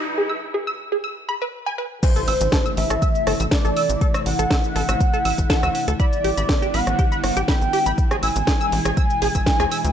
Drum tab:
CC |----------------|x---------------|----------------|----------------|
HH |----------------|xxoxxxoxxxoxxxox|xxoxxxoxxxoxxxox|xxoxxxoxxxoxxxox|
SH |----------------|xx-xxx-xxx-xxx-x|xx-xxx-xxx-xxx-x|xx-xxx-xxx-xxx-x|
SD |----------------|----o--r--r-o---|-r--o--r----or--|----o--r--r-o---|
BD |----------------|o---o---o---o---|o---o---o--oo---|o---o---o---o---|

CC |----------------|
HH |xxoxxxoxxxoxxxox|
SH |xx-xxx-xxx-xxx-x|
SD |-r--o--r----or--|
BD |o---o---o--oo---|